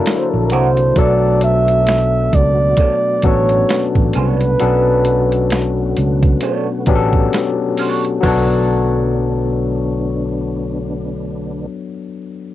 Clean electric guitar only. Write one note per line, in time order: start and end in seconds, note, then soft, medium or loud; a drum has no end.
0.06 muted clean electric guitar stroke soft
0.52 0.67 F#4 medium
0.52 0.67 A#4 medium
0.52 0.67 E5 medium
2.79 2.94 D4 medium
2.79 2.94 A4 medium
2.79 2.94 C#5 medium
3.70 muted clean electric guitar stroke soft
4.15 4.39 D4 medium
4.15 4.39 A4 medium
4.15 4.39 C#5 medium
6.43 6.66 D4 medium
6.43 6.66 A4 medium
6.43 6.66 C#5 medium
7.34 muted clean electric guitar stroke soft
7.79 8.02 D4 medium
7.79 8.02 A4 medium
7.79 8.03 C#5 medium
8.23 11.73 D4 medium
8.23 11.76 A4 medium
8.28 11.78 C#5 medium